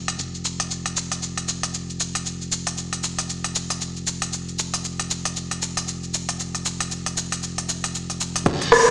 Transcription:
Already playing: sub bass F1
0.08 closed hi-hat, cabasa
0.18 sub bass F1, cabasa
0.35 cabasa
0.45 cabasa
0.60 closed hi-hat, cabasa
0.71 cabasa
0.86 closed hi-hat, cabasa
0.97 cabasa
1.12 closed hi-hat, cabasa
1.23 cabasa
1.38 closed hi-hat, cabasa
1.48 cabasa
1.63 closed hi-hat, cabasa
1.74 cabasa
1.90 cabasa
2.00 cabasa
2.15 closed hi-hat, cabasa
2.26 cabasa
2.42 cabasa
2.52 cabasa
2.67 closed hi-hat, cabasa
2.78 cabasa
2.93 closed hi-hat, cabasa
3.04 cabasa
3.19 closed hi-hat, cabasa
3.29 cabasa
3.44 closed hi-hat, cabasa
3.55 cabasa
3.70 closed hi-hat, cabasa
3.81 cabasa
3.97 cabasa
4.07 cabasa
4.22 closed hi-hat, cabasa
4.33 cabasa
4.48 cabasa
4.59 cabasa
4.74 closed hi-hat, cabasa
4.85 cabasa
5.00 closed hi-hat, cabasa
5.10 cabasa
5.25 closed hi-hat, cabasa
5.36 cabasa
5.51 closed hi-hat, cabasa
5.62 cabasa
5.77 closed hi-hat, cabasa
5.88 cabasa
6.03 cabasa
6.14 cabasa
6.29 closed hi-hat, cabasa
6.40 cabasa
6.55 closed hi-hat, cabasa
6.66 cabasa
6.80 closed hi-hat, cabasa
6.91 cabasa
7.06 closed hi-hat, cabasa
7.17 cabasa
7.32 closed hi-hat, cabasa
7.43 cabasa
7.58 closed hi-hat, cabasa
7.69 cabasa
7.84 closed hi-hat, cabasa
7.95 cabasa
8.10 closed hi-hat, cabasa
8.21 cabasa
8.36 closed hi-hat, cabasa
8.46 sub bass F1, kick, closed hi-hat, ride, crash, cabasa
8.62 closed hi-hat, cabasa
8.72 cross-stick, open hi-hat, ride, cabasa
8.87 sub bass F1

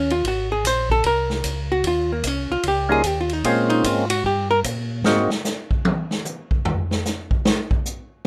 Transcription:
Already playing: tonewheel organ D#2, hollow-body jazz guitar C#4
0.10 hollow-body jazz guitar F4, ride
0.24 tonewheel organ G#1, hollow-body jazz guitar F#4, kick, ride
0.52 hollow-body jazz guitar G#4
0.64 tonewheel organ A#1, hollow-body jazz guitar C5, kick, hi-hat pedal, ride
0.90 hollow-body jazz guitar A4, kick
1.04 tonewheel organ C2, hollow-body jazz guitar A#4, kick, ride
1.30 snare
1.44 tonewheel organ C#2, kick, hi-hat pedal, ride
1.72 hollow-body jazz guitar F#4
1.83 tonewheel organ D#2, kick, ride
1.87 hollow-body jazz guitar F4
2.12 hollow-body jazz guitar A#3
2.23 tonewheel organ C2, hollow-body jazz guitar C#4, kick, hi-hat pedal, ride
2.50 tonewheel organ C2, hollow-body jazz guitar F4
2.63 tonewheel organ C#2, kick, ride
2.68 hollow-body jazz guitar G4
2.89 tonewheel organ G3 A#3 C#4 D#4 F4, hollow-body jazz guitar G#4
3.04 tonewheel organ D#2, hollow-body jazz guitar G4, kick, hi-hat pedal, ride
3.21 hollow-body jazz guitar F4
3.29 hollow-body jazz guitar D#4, ride
3.44 tonewheel organ A#2 G#3 A#3 C4 C#4 F4, hollow-body jazz guitar C#4, kick, ride
3.70 hollow-body jazz guitar D#4, ride
3.84 tonewheel organ G#2, hollow-body jazz guitar F4, kick, hi-hat pedal, ride
4.10 hollow-body jazz guitar F#4, ride
4.24 tonewheel organ G2, hollow-body jazz guitar G4, kick
4.51 hollow-body jazz guitar A#4
4.64 tonewheel organ A#2, kick, hi-hat pedal, ride
5.02 tonewheel organ G#2 G#3 A#3, snare
5.06 tonewheel organ C4 D#4 F#4
5.30 snare
5.45 snare, hi-hat pedal
5.71 kick
5.85 high tom
6.11 snare
6.25 hi-hat pedal, high tom
6.51 kick
6.65 floor tom
6.91 snare
7.05 snare, hi-hat pedal
7.31 kick
7.45 snare
7.71 kick
7.86 hi-hat pedal

